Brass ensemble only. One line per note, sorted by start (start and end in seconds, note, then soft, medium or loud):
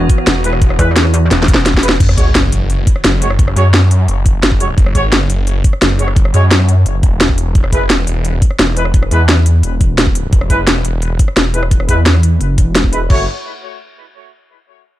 0.44 0.50 G#3 medium
0.44 0.50 E4 medium
0.44 0.50 B4 medium
0.79 0.88 G#3 medium
0.79 0.88 E4 medium
0.79 0.88 B4 medium
1.83 1.89 G#3 medium
1.83 1.89 E4 medium
1.83 1.89 B4 medium
2.18 2.27 G#3 medium
2.18 2.27 F#4 medium
2.18 2.27 C#5 medium
3.22 3.27 G#3 medium
3.22 3.27 F#4 medium
3.22 3.27 C#5 medium
3.56 3.65 G#3 medium
3.56 3.65 F#4 medium
3.56 3.65 C#5 medium
4.60 4.66 G#3 medium
4.60 4.66 F#4 medium
4.60 4.66 C#5 medium
4.95 5.04 G#3 medium
4.95 5.04 F#4 medium
4.95 5.04 C#5 medium
5.99 6.05 G#3 medium
5.99 6.05 F#4 medium
5.99 6.05 C#5 medium
6.34 6.43 G#3 medium
6.34 6.43 F#4 medium
6.34 6.43 C#5 loud
7.72 7.82 G#3 medium
7.72 7.82 E4 medium
7.72 7.82 B4 medium
8.77 8.82 G#3 medium
8.77 8.82 E4 medium
8.77 8.82 B4 medium
9.11 9.20 G#3 medium
9.11 9.20 E4 medium
9.11 9.20 B4 medium
10.50 10.59 G#3 medium
10.50 10.59 E4 medium
10.50 10.59 B4 medium
11.54 11.60 G#3 medium
11.54 11.60 E4 medium
11.54 11.60 B4 medium
11.89 11.98 G#3 medium
11.89 11.98 E4 medium
11.89 11.98 B4 medium
12.93 12.98 G#3 medium
12.93 12.98 E4 medium
12.93 12.98 B4 medium
13.10 13.23 A3 medium
13.10 13.23 F#4 medium
13.10 13.23 C#5 loud